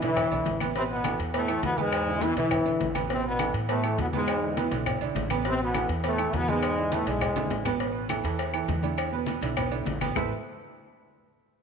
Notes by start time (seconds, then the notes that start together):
0.02 B1 D3 E3 D4 E4, cowbell, high conga, low agogo
0.16 cowbell, high conga, low conga, low agogo, claves
0.31 B1 D3 D4 E4, high conga, low agogo
0.45 A1, cowbell, high conga, low timbale
0.60 B2 B3 B4, cowbell, high conga, low agogo, claves
0.75 B2 C3 B3 C4 B4, cowbell, high conga
0.89 B2 B3, high conga
1.04 E3 E4 A4, cowbell, high conga, low timbale, low agogo, claves
1.19 E2, cowbell
1.34 A2 B2 A3 B3 B4, cowbell, high conga, low agogo
1.48 E3 E4 A4, high conga, low agogo, claves
1.63 E2 B2 B3, cowbell, high conga, low timbale
1.78 G#2 B2 G#3 B3 B4, high conga, low agogo
1.92 cowbell, high conga, low agogo, claves
2.07 D3 D4 E4, high conga
2.21 B2 E3 B3 E4 B4, cowbell, high conga, low timbale, low agogo
2.36 B1 D3 E3 D4 E4, cowbell, high conga, low agogo
2.51 cowbell, high conga, low conga, low agogo, claves
2.66 B1 D3 D4 E4, high conga, low agogo
2.80 A1, cowbell, high conga, low timbale
2.95 B2 B3 B4, cowbell, high conga, low agogo, claves
3.10 B2 C3 B3 C4 B4, cowbell, high conga
3.25 B2 B3, high conga
3.39 E3 E4 A4, cowbell, high conga, low timbale, low agogo, claves
3.54 A2, cowbell
3.69 A2 B2 A3 B3 B4, cowbell, high conga, low agogo
3.84 E3 E4 A4, high conga, low agogo, claves
3.98 E2 B2 B3, cowbell, high conga, low timbale
4.13 G#2 B2 G#3 B3 B4, high conga, low agogo
4.28 cowbell, high conga, low agogo, claves
4.43 D3 D4 E4, high conga
4.57 B2 E3 B3 E4 B4, cowbell, high conga, low timbale, low agogo
4.71 B1 D3 D4 E4, cowbell, high conga, low agogo
4.86 cowbell, high conga, low conga, low agogo, claves
5.01 B1 D3 D4 E4, high conga, low agogo
5.15 A1, cowbell, high conga, low timbale
5.30 B2 B3 B4, cowbell, high conga, low agogo, claves
5.45 B2 C3 B3 C4 B4, cowbell, high conga
5.60 B2 B3, high conga
5.74 E3 E4 A4, cowbell, high conga, low timbale, low agogo, claves
5.89 E2, cowbell
6.04 A2 B2 A3 B3 B4, cowbell, high conga, low agogo
6.18 E3 E4 A4, high conga, low agogo, claves
6.33 E2 B2 B3, cowbell, high conga, low timbale
6.48 G#2 B2 G#3 B3 B4, high conga, low agogo
6.63 cowbell, high conga, low agogo, claves
6.78 D3 D4 E4, high conga
6.92 A2 B2 A3 B3 B4, cowbell, high conga, low timbale, low agogo
7.06 B1 G#2 D3 G#3 D4 E4, cowbell, high conga, low agogo
7.21 cowbell, high conga, low conga, low agogo, claves
7.36 B1 D3 D4 E4, high bongo, high conga, high timbale, low agogo
7.46 high conga
7.50 A1, cowbell, low bongo, low timbale
7.65 B2 B3 B4, cowbell, low bongo, low conga, low timbale, low agogo, claves
7.80 B2 B3 B4, cowbell, high conga
7.95 high conga
8.09 E3 E4 A4, cowbell, high conga, low timbale, low agogo, claves
8.24 E2 E3 E4 A4, cowbell
8.39 cowbell, high conga, low agogo
8.54 E3 E4 A4, high conga, low agogo, claves
8.68 E2, cowbell, high conga, low timbale
8.83 D3 D4 E4, high conga, low agogo
8.98 cowbell, high conga, low agogo, claves
9.12 B2 B3 B4, high conga
9.26 cowbell, high conga, low timbale, low agogo
9.41 B1 D3 D4 E4, cowbell, high conga, low agogo
9.56 B2 B3 B4, cowbell, high conga, low conga, low agogo, claves
9.71 D3 D4 E4, high conga, low agogo
9.85 A1, cowbell, high conga, low timbale
10.01 B2 B3 B4, cowbell, high conga, low agogo, claves
10.15 A1 A3 E4 A4 B4 C5 E5, low bongo, low conga, low timbale, claves